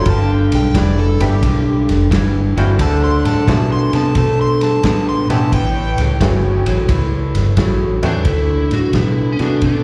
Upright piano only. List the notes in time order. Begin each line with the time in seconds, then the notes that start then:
1.21 G3 A3 B3 D4 G4
2.57 E3 A3 C4 D4 F#4
3.48 E3 A3 D4 E4 F#4
5.30 E3 A3 B3 C#4 G4
6.20 E3 A3 B3 C#4 G5
8.03 E3 A3 C4 D4 F#4
9.39 E3 A3 D4 E4 F#4